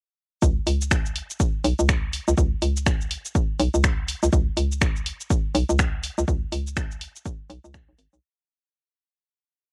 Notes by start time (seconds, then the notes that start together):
0.42 C#2, kick, cabasa
0.67 C#2, open hi-hat, cabasa
0.82 cabasa
0.91 finger snap, kick, cabasa
1.06 cabasa
1.16 open hi-hat
1.30 cabasa
1.40 kick, cabasa
1.64 B1, open hi-hat, cabasa
1.79 C#2, cabasa
1.89 finger snap, kick, cabasa
2.13 open hi-hat, cabasa
2.28 C#2, cabasa
2.37 C#2, kick, cabasa
2.62 C#2, open hi-hat, cabasa
2.77 cabasa
2.86 finger snap, kick, cabasa
3.01 cabasa
3.11 open hi-hat
3.25 cabasa
3.35 kick, cabasa
3.59 B1, open hi-hat, cabasa
3.74 C#2, cabasa
3.84 finger snap, kick, cabasa
4.08 open hi-hat, cabasa
4.23 C#2, cabasa
4.33 C#2, kick, cabasa
4.57 C#2, open hi-hat, cabasa
4.72 cabasa
4.81 finger snap, kick, cabasa
4.96 cabasa
5.06 open hi-hat
5.21 cabasa
5.30 kick, cabasa
5.55 B1, open hi-hat, cabasa
5.69 C#2, cabasa
5.79 finger snap, kick, cabasa
6.04 open hi-hat, cabasa
6.18 C#2, cabasa
6.28 C#2, kick, cabasa
6.52 C#2, open hi-hat, cabasa
6.67 cabasa
6.77 finger snap, kick, cabasa
6.91 cabasa
7.01 open hi-hat
7.16 cabasa
7.25 kick, cabasa
7.50 B1, open hi-hat, cabasa
7.64 C#2, cabasa
7.74 finger snap, kick, cabasa
7.89 B1
7.99 G#1, open hi-hat, cabasa
8.13 B1, cabasa